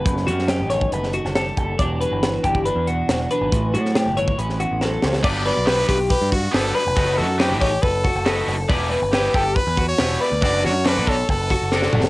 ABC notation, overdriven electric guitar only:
X:1
M:4/4
L:1/8
Q:1/4=139
K:Bm
V:1 name="Overdriven electric guitar"
z8 | z8 | z8 | [B,DGB] z [B,DGB] z3 [B,DGB] z |
[A,^DFB] z [A,DFB] z3 [A,DFB] z | [B,EGB] z [B,EGB] z3 [B,EGB] z | [A,DFd] z [A,DFd] z3 [A,DFd] z |]